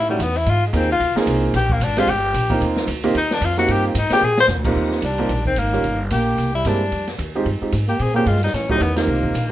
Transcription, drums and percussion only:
0.20 kick, hi-hat pedal, ride
0.36 ride
0.46 kick, ride
0.73 kick, hi-hat pedal, ride
1.00 kick, ride
1.16 snare
1.27 kick, hi-hat pedal, ride
1.54 kick, snare, ride
1.70 kick
1.81 kick, hi-hat pedal, ride
1.97 snare, ride
2.07 kick, ride
2.34 kick, hi-hat pedal, ride
2.50 kick, ride
2.62 ride
2.76 snare
2.88 kick, hi-hat pedal, ride
3.03 ride
3.15 kick, ride
3.31 snare
3.42 kick, hi-hat pedal, ride
3.57 snare
3.68 kick, ride
3.95 kick, hi-hat pedal, ride
4.10 snare, ride
4.38 snare
4.48 snare, hi-hat pedal
4.65 kick, crash
4.76 kick
4.91 snare
5.02 kick, hi-hat pedal, ride
5.18 ride
5.29 kick, snare, ride
5.46 kick
5.56 kick, hi-hat pedal, ride
5.73 snare
5.84 kick, ride
6.10 kick, hi-hat pedal, ride
6.38 kick, ride
6.65 kick, hi-hat pedal, ride
6.92 kick, ride
7.07 snare, ride
7.19 kick, hi-hat pedal, ride
7.46 kick, ride
7.72 kick, hi-hat pedal, ride
7.88 ride
7.99 kick, ride
8.26 kick, hi-hat pedal, ride
8.36 snare
8.43 snare, ride
8.54 kick, snare, ride
8.70 kick
8.80 kick, hi-hat pedal, ride
8.96 snare, ride
9.23 kick
9.35 kick, hi-hat pedal, ride

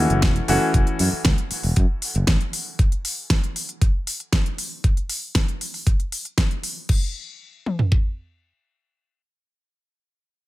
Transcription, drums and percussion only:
0.10 closed hi-hat
0.22 kick, snare, closed hi-hat
0.36 closed hi-hat
0.48 open hi-hat
0.74 kick, closed hi-hat
0.87 closed hi-hat
0.99 open hi-hat
1.25 kick, snare, closed hi-hat
1.38 closed hi-hat
1.51 open hi-hat
1.63 open hi-hat
1.76 kick, closed hi-hat
2.02 open hi-hat
2.15 closed hi-hat
2.27 kick, snare, closed hi-hat
2.41 closed hi-hat
2.53 open hi-hat
2.79 kick, closed hi-hat
2.92 closed hi-hat
3.05 open hi-hat
3.30 kick, snare, closed hi-hat
3.44 closed hi-hat
3.56 open hi-hat
3.69 closed hi-hat
3.82 kick, closed hi-hat
4.07 open hi-hat
4.20 closed hi-hat
4.33 kick, snare, closed hi-hat
4.46 closed hi-hat
4.58 open hi-hat
4.84 kick, closed hi-hat
4.97 closed hi-hat
5.09 open hi-hat
5.35 kick, snare, closed hi-hat
5.48 closed hi-hat
5.61 open hi-hat
5.74 open hi-hat
5.87 kick, closed hi-hat
6.00 closed hi-hat
6.12 open hi-hat
6.25 closed hi-hat
6.38 kick, snare, closed hi-hat
6.51 closed hi-hat
6.63 open hi-hat
6.89 kick, crash
7.66 mid tom
7.79 floor tom
7.92 kick

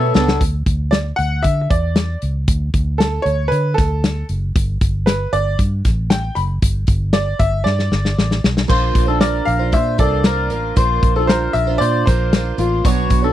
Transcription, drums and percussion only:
0.15 snare
0.28 snare
0.41 kick, closed hi-hat
0.66 kick, closed hi-hat
0.93 snare, closed hi-hat
1.18 closed hi-hat
1.44 kick, closed hi-hat
1.71 kick, closed hi-hat
1.96 snare, closed hi-hat
2.22 closed hi-hat
2.48 kick, closed hi-hat
2.74 kick, closed hi-hat
3.00 snare, closed hi-hat
3.26 closed hi-hat
3.52 closed hi-hat
3.78 kick, snare, closed hi-hat
4.04 snare, closed hi-hat
4.29 closed hi-hat
4.56 kick, closed hi-hat
4.81 kick, closed hi-hat
5.07 snare, closed hi-hat
5.33 closed hi-hat
5.59 kick, closed hi-hat
5.85 kick, snare, closed hi-hat
6.10 snare, closed hi-hat
6.36 closed hi-hat
6.62 kick, closed hi-hat
6.87 kick, closed hi-hat
7.13 snare, closed hi-hat
7.39 kick, closed hi-hat
7.66 snare
7.79 snare
7.92 snare
8.05 snare
8.18 snare
8.31 snare
8.44 snare
8.57 snare
8.70 kick, crash
8.95 kick, closed hi-hat
9.21 snare, closed hi-hat
9.48 closed hi-hat
9.72 kick, closed hi-hat
9.99 kick, closed hi-hat
10.24 snare, closed hi-hat
10.50 closed hi-hat
10.77 kick, closed hi-hat
11.03 kick, closed hi-hat
11.29 snare, closed hi-hat
11.55 closed hi-hat
11.81 closed hi-hat
12.07 kick, snare, closed hi-hat
12.33 snare, closed hi-hat
12.58 closed hi-hat
12.85 kick, closed hi-hat
13.10 kick, closed hi-hat

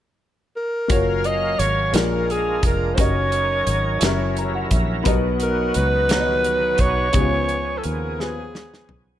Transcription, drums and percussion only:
0.90 kick, closed hi-hat
1.24 closed hi-hat
1.59 closed hi-hat
1.94 snare, closed hi-hat
2.30 closed hi-hat
2.63 kick, closed hi-hat
2.98 kick, closed hi-hat
3.32 closed hi-hat
3.67 closed hi-hat
4.01 snare, closed hi-hat
4.37 closed hi-hat
4.71 kick, closed hi-hat
5.05 kick, closed hi-hat
5.40 closed hi-hat
5.74 closed hi-hat
6.09 snare, closed hi-hat
6.44 closed hi-hat
6.78 kick, closed hi-hat
7.13 kick, closed hi-hat
7.49 closed hi-hat
7.84 closed hi-hat
8.20 snare
8.55 snare
8.74 snare
8.89 floor tom

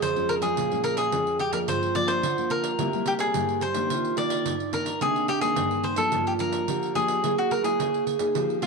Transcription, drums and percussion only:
0.02 pandeiro
0.16 pandeiro
0.29 pandeiro
0.42 pandeiro
0.57 pandeiro
0.71 pandeiro
0.84 pandeiro
0.97 pandeiro
1.12 pandeiro
1.27 pandeiro
1.39 pandeiro
1.53 pandeiro
1.68 pandeiro
1.83 pandeiro
1.95 pandeiro
2.08 pandeiro
2.23 pandeiro
2.38 pandeiro
2.50 pandeiro
2.64 pandeiro
2.79 pandeiro
2.93 pandeiro
3.06 pandeiro
3.19 pandeiro
3.34 pandeiro
3.49 pandeiro
3.61 pandeiro
3.74 pandeiro
3.90 pandeiro
4.05 pandeiro
4.17 pandeiro
4.30 pandeiro
4.46 pandeiro
4.60 pandeiro
4.73 pandeiro
4.86 pandeiro
5.01 pandeiro
5.16 pandeiro
5.28 pandeiro
5.41 pandeiro
5.56 pandeiro
5.71 pandeiro
5.83 pandeiro
5.96 pandeiro
6.12 pandeiro
6.27 pandeiro
6.39 pandeiro
6.52 pandeiro
6.68 pandeiro
6.83 pandeiro
6.95 pandeiro
7.08 pandeiro
7.24 pandeiro
7.39 pandeiro
7.51 pandeiro
7.64 pandeiro
7.80 pandeiro
7.94 pandeiro
8.07 pandeiro
8.19 pandeiro
8.35 pandeiro
8.50 pandeiro
8.62 pandeiro

